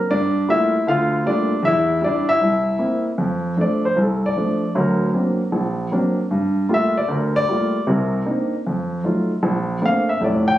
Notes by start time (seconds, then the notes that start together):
Already playing: A#4
0.10 G2 D4 D5
0.48 G3 A3 A#3 E4 F4 E5
0.87 D2 D3 F4 F5
1.25 G3 A3 A#3 F4 D5
1.29 D4
1.63 E2 E5
1.67 E4
2.01 G3 D4 E4 D5
2.06 D4
2.29 E4 E5
2.41 C2
2.79 A#3 C4 E4
3.18 F2
3.57 F3 A3 D4
3.61 D5
3.85 C5
3.96 C2
4.02 A4
4.26 D5
4.36 F3 A3 D4
4.75 D2 F#3
4.80 A#4
5.13 F#3 A#3 C4 D4
5.52 A#1
5.92 F#3 A#3 C4 D4
6.31 G2
6.69 G3 A3 A#3 F4
6.74 E5
6.98 D5
7.08 D2 A#4
7.36 D5
7.48 G3 A3 A#3 F4
7.87 C2 C3 A#4
8.26 A#3 C4 D4 D#4
8.67 F2
9.04 F#3 A3 D#4 F4
9.43 A#1
9.82 A3 A#3 C4 D4 F5
10.09 E5
10.21 F1 A2 D5
10.48 G5